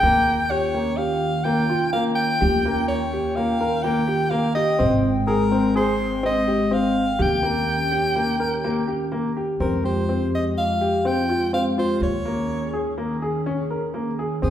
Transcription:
0.00 2.38 D#2 medium
0.00 0.34 A#3 medium
0.00 4.77 C#4 medium
0.00 0.52 G5 loud
0.04 4.77 D#3 medium
0.04 4.77 F4 medium
0.04 7.16 G5 medium
0.51 0.66 G4 medium
0.51 0.99 C#5 medium
0.74 0.90 A#3 medium
0.97 1.29 G4 medium
0.97 1.46 F5 medium
1.44 1.61 A#3 medium
1.44 1.92 G5 medium
1.70 1.85 F4 medium
1.93 2.24 A#3 medium
1.93 2.04 F5 medium
2.15 2.84 G5 medium
2.41 4.77 D#2 medium
2.41 2.57 G4 medium
2.65 2.97 A#3 medium
2.88 3.37 C#5 medium
3.13 3.29 G4 medium
3.36 3.53 A#3 medium
3.36 3.84 F5 medium
3.60 3.76 A#4 medium
3.83 4.00 A#3 medium
3.83 4.31 G5 loud
4.08 4.24 G4 medium
4.30 4.47 A#3 medium
4.30 4.54 F5 medium
4.55 4.71 G4 medium
4.55 4.97 D#5 medium
4.79 7.15 G#1 medium
4.79 7.17 G#3 medium
4.79 5.11 C4 medium
4.79 7.17 C4 medium
5.27 5.43 G#4 medium
5.27 5.72 A#4 medium
5.52 5.67 C4 medium
5.76 6.07 G#4 medium
5.76 6.21 C5 medium
6.23 6.39 C4 medium
6.23 6.75 D#5 medium
6.48 6.63 G4 medium
6.71 7.03 C4 medium
6.71 7.23 F5 medium
7.19 9.56 D#2 medium
7.19 9.57 D#3 medium
7.19 9.57 C#4 medium
7.19 7.35 G4 medium
7.19 9.57 G4 medium
7.19 9.13 G5 medium
7.43 7.74 A#3 medium
7.91 8.07 G4 medium
8.16 8.31 A#3 medium
8.40 8.55 A#4 medium
8.64 8.80 A#3 medium
8.88 9.04 G4 medium
9.12 9.28 A#3 medium
9.37 9.52 G4 medium
9.59 11.97 F2 medium
9.59 11.98 G#3 medium
9.59 9.76 C4 medium
9.59 11.98 F4 medium
9.59 11.98 G4 medium
9.59 9.83 A#4 medium
9.84 10.00 G4 medium
9.84 10.29 C5 medium
10.09 10.40 C4 medium
10.35 10.45 D#5 medium
10.58 11.09 F5 medium
10.81 10.97 G4 medium
11.05 11.21 C4 medium
11.05 11.53 G5 medium
11.29 11.45 F4 medium
11.53 11.69 C4 medium
11.53 11.65 F5 medium
11.78 12.09 F4 medium
11.78 12.00 C5 medium
12.01 14.38 D#2 medium
12.01 14.40 D#3 medium
12.01 14.40 C#4 medium
12.01 14.40 G#4 medium
12.01 12.94 C#5 medium
12.25 12.57 A#3 medium
12.73 12.89 G#4 medium
12.98 13.13 A#3 medium
13.22 13.38 G#4 medium
13.46 13.62 C#4 medium
13.70 13.86 A#4 medium
13.94 14.10 A#3 medium
14.19 14.34 G#4 medium
14.42 14.50 F2 medium
14.42 14.50 G#3 medium
14.42 14.50 C4 medium
14.42 14.50 F4 medium
14.42 14.50 G4 medium
14.42 14.50 G#4 medium

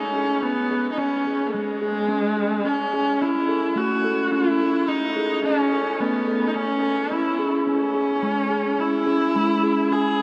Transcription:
0.00 0.15 C#4 medium
0.00 0.44 C#4 medium
0.15 0.43 G#4 medium
0.42 0.91 B3 medium
0.42 0.70 C#4 medium
0.71 0.98 G#4 medium
0.92 0.99 D#4 medium
0.98 1.49 C#4 medium
0.98 1.26 C#4 medium
1.27 1.54 G#4 medium
1.47 1.54 A3 soft
1.53 2.67 G#3 medium
1.53 1.82 G#3 medium
1.82 2.09 G#4 medium
2.08 2.36 C#4 medium
2.37 2.65 G#4 medium
2.64 2.92 C#4 medium
2.64 3.23 C#4 medium
2.93 3.21 G#4 medium
3.22 3.49 C#4 medium
3.22 3.79 E4 medium
3.49 3.76 A4 medium
3.76 4.04 A3 medium
3.76 4.32 F#4 medium
4.04 4.32 A4 medium
4.32 4.60 C#4 medium
4.32 4.90 E4 medium
4.61 4.88 A4 medium
4.88 5.16 C#4 medium
4.88 5.44 D#4 medium
5.16 5.44 G#4 medium
5.43 5.71 C#4 medium
5.43 6.01 C#4 medium
5.72 5.99 A4 medium
6.00 6.28 A3 medium
6.00 6.49 B3 medium
6.28 6.55 A4 medium
6.47 6.56 D#4 medium
6.54 7.13 C#4 medium
6.54 6.83 C#4 medium
6.83 7.11 A4 medium
7.12 7.39 C#4 medium
7.12 7.53 E4 medium
7.39 7.67 G#4 medium
7.67 7.95 C#4 medium
7.67 8.81 C#4 medium
7.94 8.22 G#4 medium
8.23 8.51 G#3 medium
8.50 8.78 G#4 medium
8.79 9.06 C#4 medium
8.79 9.93 E4 medium
9.06 9.30 C#4 medium
9.06 9.35 G#4 medium
9.35 9.80 G#3 medium
9.35 9.63 C#4 medium
9.63 9.91 G#4 medium
9.91 10.19 C#4 medium
9.91 10.22 G#4 medium

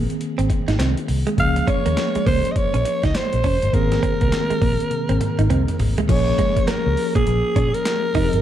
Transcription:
0.00 1.34 D#3 medium
0.00 1.34 A#3 medium
0.00 1.34 C4 medium
0.00 1.35 G#4 medium
0.10 closed hi-hat medium
0.21 closed hi-hat medium
0.38 0.48 G#1 medium
0.38 0.46 C4 medium
0.38 closed hi-hat medium
0.50 muted clean electric guitar stroke soft
0.50 kick medium
0.50 closed hi-hat medium
0.68 0.77 G#1 medium
0.68 0.76 D#4 medium
0.68 snare medium
0.68 closed hi-hat medium
0.79 0.94 C2 medium
0.79 0.91 C4 medium
0.79 snare loud
0.79 clap loud
0.79 closed hi-hat medium
0.97 closed hi-hat medium
1.08 1.23 C2 medium
1.08 muted clean electric guitar stroke soft
1.08 open hi-hat medium
1.27 1.34 G#3 medium
1.27 closed hi-hat medium
1.37 1.61 C#2 loud
1.37 3.69 F3 medium
1.37 3.69 A#3 medium
1.37 3.70 C#4 medium
1.37 3.70 G#4 medium
1.37 1.71 F5 loud
1.37 kick loud
1.37 closed hi-hat medium
1.56 muted clean electric guitar stroke soft
1.56 closed hi-hat medium
1.67 1.80 C#4 medium
1.67 2.27 C#5 medium
1.67 kick loud
1.67 closed hi-hat medium
1.86 1.95 D#2 medium
1.86 1.93 A#3 medium
1.86 closed hi-hat medium
1.97 muted clean electric guitar stroke soft
1.97 snare loud
1.97 clap medium
1.97 closed hi-hat medium
2.15 2.23 G#3 medium
2.15 muted fingered electric bass stroke soft
2.15 closed hi-hat medium
2.26 2.41 C#2 medium
2.26 2.39 A#3 medium
2.26 2.53 C5 loud
2.26 kick loud
2.26 open hi-hat medium
2.45 closed hi-hat medium
2.51 2.59 D#5 medium
2.56 3.06 C#5 loud
2.56 kick medium
2.56 closed hi-hat medium
2.74 2.83 A#1 medium
2.74 2.82 C#4 medium
2.74 closed hi-hat medium
2.85 muted clean electric guitar stroke soft
2.85 closed hi-hat medium
3.03 3.12 C#2 medium
3.03 3.11 D#4 medium
3.03 3.17 D#5 medium
3.03 kick medium
3.03 snare medium
3.03 closed hi-hat medium
3.15 3.75 C5 medium
3.15 snare loud
3.15 clap medium
3.15 closed hi-hat medium
3.33 3.42 A#1 medium
3.33 closed hi-hat medium
3.44 3.58 F1 medium
3.44 3.56 C#4 medium
3.44 kick medium
3.44 open hi-hat medium
3.62 3.71 G1 medium
3.62 closed hi-hat medium
3.73 3.96 G#1 loud
3.73 6.04 D#3 medium
3.73 6.05 A#3 medium
3.73 6.05 C4 medium
3.73 6.06 G#4 medium
3.73 5.80 A#4 loud
3.73 kick loud
3.73 closed hi-hat medium
3.92 muted clean electric guitar stroke soft
3.92 snare medium
3.92 closed hi-hat medium
4.03 4.15 C4 medium
4.03 kick medium
4.03 closed hi-hat medium
4.21 4.30 C2 medium
4.21 4.29 A#3 medium
4.21 kick loud
4.21 closed hi-hat medium
4.32 muted clean electric guitar stroke medium
4.32 snare loud
4.32 clap medium
4.32 closed hi-hat medium
4.50 4.58 G#3 medium
4.50 muted fingered electric bass stroke soft
4.50 closed hi-hat medium
4.62 4.76 A#1 medium
4.62 4.74 A#3 medium
4.62 kick loud
4.62 open hi-hat medium
4.80 closed hi-hat medium
4.91 closed hi-hat medium
4.91 high tom medium
5.09 5.18 G#1 medium
5.09 5.17 C4 medium
5.09 closed hi-hat medium
5.09 high tom medium
5.21 muted clean electric guitar stroke soft
5.21 closed hi-hat medium
5.21 mid tom medium
5.39 5.47 G#1 medium
5.39 5.46 D#4 medium
5.39 closed hi-hat medium
5.39 mid tom medium
5.50 5.64 C2 medium
5.50 5.62 C4 medium
5.50 closed hi-hat medium
5.50 mid tom medium
5.68 closed hi-hat medium
5.68 mid tom medium
5.79 5.94 G#1 medium
5.79 muted clean electric guitar stroke soft
5.79 floor tom loud
5.79 open hi-hat medium
5.98 6.06 G#3 medium
5.98 closed hi-hat medium
5.98 floor tom medium
6.08 6.32 A#1 loud
6.08 8.10 F3 medium
6.08 6.21 F3 medium
6.08 8.11 A#3 medium
6.08 8.11 C#4 medium
6.08 8.11 G#4 medium
6.08 6.69 C#5 loud
6.08 kick loud
6.08 closed hi-hat medium
6.08 crash medium
6.38 6.51 G#3 medium
6.38 kick medium
6.38 closed hi-hat medium
6.57 muted clean electric guitar stroke soft
6.57 muted fingered electric bass stroke medium
6.57 kick loud
6.57 closed hi-hat medium
6.68 6.80 A#3 medium
6.68 7.15 A#4 medium
6.68 muted fingered electric bass stroke soft
6.68 snare loud
6.68 clap medium
6.68 closed hi-hat medium
6.86 6.95 C#2 medium
6.86 muted clean electric guitar stroke soft
6.97 open hi-hat medium
7.15 7.24 A#1 medium
7.15 7.23 A#3 medium
7.15 7.76 G#4 medium
7.15 kick medium
7.15 closed hi-hat medium
7.27 7.41 A#1 loud
7.27 closed hi-hat medium
7.56 7.70 A#2 loud
7.56 7.68 C#4 medium
7.56 kick medium
7.56 closed hi-hat medium
7.74 8.42 A#4 loud
7.74 closed hi-hat medium
7.85 snare loud
7.85 clap loud
7.85 closed hi-hat medium
8.14 8.29 F1 medium
8.14 8.42 F3 medium
8.14 8.42 C4 medium
8.14 8.27 D#4 medium
8.14 8.42 D#4 medium
8.14 8.24 G4 medium
8.14 kick medium
8.14 open hi-hat medium
8.23 8.42 G#4 medium
8.33 8.42 G1 medium
8.33 closed hi-hat medium

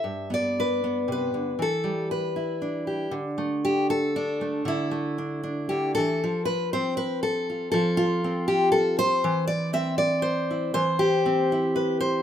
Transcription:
0.00 1.59 G2 medium
0.00 0.32 E5 loud
0.30 0.83 B3 soft
0.30 1.10 D5 medium
0.60 1.10 B4 medium
0.84 1.57 B3 soft
1.08 1.34 C3 medium
1.12 1.62 B4 medium
1.34 1.58 D3 medium
1.59 3.11 E3 medium
1.59 2.11 A4 medium
1.84 3.09 G3 medium
2.11 2.87 B4 medium
2.36 3.14 E4 soft
2.62 4.16 D4 soft
2.87 3.13 G4 soft
3.11 4.63 D3 medium
3.38 4.41 A3 medium
3.65 3.90 G4 medium
3.90 4.67 A4 medium
4.16 4.67 D4 medium
4.41 4.91 A3 soft
4.65 5.69 D3 medium
4.65 6.23 E4 medium
4.91 6.19 A3 medium
5.18 5.42 D4 soft
5.43 6.19 D4 soft
5.69 5.97 D3 medium
5.69 5.94 G4 medium
5.95 6.23 E3 medium
5.95 6.45 A4 loud
6.24 7.72 F3 medium
6.45 6.72 B4 loud
6.73 8.24 C4 medium
6.73 6.97 C5 medium
6.97 7.22 B4 loud
7.23 7.70 A4 medium
7.50 7.71 F4 soft
7.72 9.24 F3 medium
7.72 8.47 A4 loud
7.97 8.98 F4 loud
8.24 9.50 C4 medium
8.48 8.71 G4 medium
8.72 8.98 A4 loud
8.99 9.47 C5 loud
9.24 10.72 E3 medium
9.47 9.73 D5 loud
9.73 11.25 C4 medium
9.73 9.98 E5 loud
9.98 10.75 D5 loud
10.22 10.73 C5 medium
10.51 10.73 E4 soft
10.74 12.22 E3 medium
10.74 11.51 C5 loud
10.99 12.22 G4 loud
11.26 12.22 C4 medium
11.52 12.22 E4 soft
11.76 12.00 B4 medium
12.01 12.22 C5 loud

